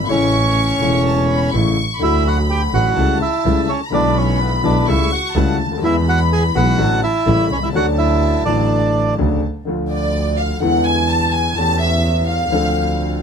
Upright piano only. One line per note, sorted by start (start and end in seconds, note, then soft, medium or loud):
0.04 0.10 G#1 medium
0.04 0.77 C#3 medium
0.08 0.78 A1 medium
0.08 0.78 A2 medium
0.08 0.77 E3 soft
0.08 0.78 A3 medium
0.08 0.79 E4 medium
0.80 1.50 E1 medium
0.80 1.50 E2 medium
0.80 1.49 C#3 soft
0.80 1.50 E3 soft
0.80 1.51 A3 medium
0.80 1.51 E4 medium
1.53 1.74 A1 medium
1.53 1.74 A2 medium
1.53 1.74 C#3 medium
1.53 1.74 E3 medium
1.53 1.74 A3 soft
1.53 1.74 E4 medium
1.99 2.70 D2 medium
1.99 2.70 D3 medium
1.99 2.70 F#3 soft
1.99 2.70 A3 soft
2.03 2.71 F#4 medium
2.73 2.94 A1 medium
2.73 2.94 A2 medium
2.73 2.94 D3 soft
2.73 2.94 F#3 soft
2.73 2.94 A3 soft
2.73 2.94 F#4 medium
2.97 3.18 C#2 medium
2.97 3.18 C#3 medium
2.97 3.18 G3 medium
2.97 3.18 A3 medium
2.97 3.18 E4 medium
3.45 3.66 C#2 medium
3.45 3.66 C#3 medium
3.45 3.65 G3 medium
3.45 3.66 A3 medium
3.45 3.66 E4 medium
3.90 4.61 B1 medium
3.90 4.61 B2 medium
3.90 4.60 D3 medium
3.90 4.61 G#3 soft
3.90 4.61 B3 medium
3.90 4.62 E4 medium
4.63 4.84 B1 medium
4.63 4.84 B2 medium
4.63 4.84 D3 medium
4.63 4.84 G#3 soft
4.63 4.84 B3 soft
4.63 4.84 E4 medium
4.87 5.08 C#2 medium
4.87 5.08 C#3 medium
4.87 5.08 G3 medium
4.87 5.08 A3 medium
4.87 5.08 E4 medium
5.36 5.56 C#2 medium
5.36 5.56 C#3 medium
5.36 5.56 G3 medium
5.36 5.56 A3 medium
5.36 5.56 E4 medium
5.66 5.72 C#2 soft
5.71 5.78 D2 soft
5.78 5.84 D#2 medium
5.82 6.52 E2 medium
5.82 6.52 E3 medium
5.82 6.51 G#3 medium
5.82 6.52 B3 soft
5.82 6.53 G#4 medium
6.55 6.75 B1 medium
6.55 6.75 B2 medium
6.55 6.75 E3 medium
6.55 6.75 G#3 medium
6.55 6.75 B3 medium
6.55 6.76 G#4 medium
6.78 6.99 A1 medium
6.78 6.99 A2 medium
6.78 6.99 D3 medium
6.78 6.99 F#3 medium
6.78 6.99 A3 medium
6.78 6.99 F#4 medium
7.26 7.47 A1 medium
7.26 7.47 A2 medium
7.26 7.47 C#3 medium
7.26 7.47 G3 medium
7.26 7.47 A3 medium
7.26 7.47 E4 medium
7.57 7.63 B1 soft
7.63 7.69 C2 soft
7.69 7.75 C#2 medium
7.73 8.43 D2 medium
7.73 8.43 D3 medium
7.73 8.43 F#3 medium
7.73 8.43 A3 medium
7.73 8.42 C#4 medium
7.77 8.44 D4 medium
8.45 9.16 A1 medium
8.45 9.16 A2 medium
8.45 9.15 D3 medium
8.45 9.15 F#3 soft
8.45 9.16 A3 soft
8.49 9.17 D4 medium
9.18 9.39 D2 medium
9.18 9.39 C#3 medium
9.18 9.39 D3 medium
9.18 9.39 F#3 medium
9.18 9.39 A3 medium
9.18 9.39 D4 medium
9.65 10.58 D2 medium
9.65 9.67 D3 soft
9.65 10.58 D3 medium
9.65 10.58 F3 soft
9.65 10.58 A3 soft
9.65 10.59 F4 medium
10.60 11.53 E2 medium
10.60 11.52 D3 medium
10.60 11.53 E3 medium
10.60 11.52 G#3 soft
10.60 11.53 B3 soft
10.65 11.54 E4 medium
11.56 12.48 E2 medium
11.56 12.48 E3 medium
11.56 12.47 A3 soft
11.56 12.48 C#4 soft
11.60 12.49 G4 medium
12.50 13.22 D2 medium
12.50 13.22 D3 medium
12.50 13.22 F3 medium
12.50 13.22 C4 medium
12.50 13.22 D4 soft
12.55 13.22 A4 medium